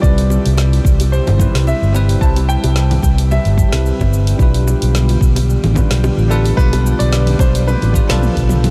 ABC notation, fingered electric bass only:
X:1
M:4/4
L:1/16
Q:"Swing 16ths" 1/4=110
K:C
V:1 name="Fingered electric bass" clef=bass
C,,2 z C,,2 z C,,2 z G,,, z C,, z G,,,2 z | C,,2 z C,,2 z C,,2 z G,,, z C,, z G,,,2 z | B,,,2 z B,,,2 z B,,,2 z A,,, z B,,, z A,,,2 z | B,,,2 z B,,,2 z B,,,2 z A,,, z B,,, z B,,,2 z |]